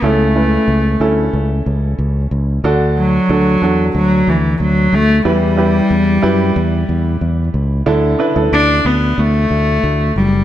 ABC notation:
X:1
M:4/4
L:1/16
Q:1/4=92
K:D
V:1 name="Upright piano"
[CEA]2 [CEB]4 [CEA]6- [CEA] z3 | [DFA]4 [DFA]2 [DFA]6- [DFA] z3 | [EGB]2 [EGB]4 [EGB]6- [EGB] z3 | [DEA]2 [DEB] [DEA]6- [DEA] z6 |]
V:2 name="Upright piano" clef=bass
C,6 z8 z2 | D,6 z8 z2 | E,6 z8 z2 | D,6 z8 z2 |]
V:3 name="Cello" clef=bass
A,8 z8 | z2 F,6 F,2 E,2 F,2 A,2 | G,12 z4 | z4 D2 B,2 A,6 G,2 |]
V:4 name="Fingered electric bass" clef=bass
C,,4 C,,2 D,,2 C,,2 C,,2 C,,2 C,,2 | D,,4 D,,2 E,,2 D,,2 D,,2 D,,2 D,,2 | E,,4 E,,2 F,,2 E,,2 E,,2 E,,2 C,,2 | D,,2 z D,, D,,2 D,,2 D,,2 D,,2 D,,2 F,,,2 |]